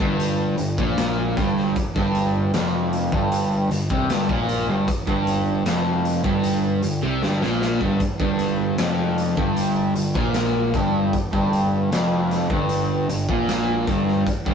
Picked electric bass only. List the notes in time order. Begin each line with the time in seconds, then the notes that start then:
0.00 G1
0.59 G1
0.78 A#1
1.38 G1
1.96 G1
2.54 F1
3.13 G1
3.71 G1
3.91 C2
4.09 G1
4.30 A#1
4.68 G1
5.07 G1
5.65 F1
6.25 G1
6.84 G1
7.03 C2
7.23 G1
7.42 A#1
7.81 G1
8.20 G1
8.79 F1
9.38 G1
9.97 G1
10.15 A#1
10.74 G1
11.33 G1
11.92 F1
12.50 G1
13.09 G1
13.29 A#1
13.88 G1
14.46 G1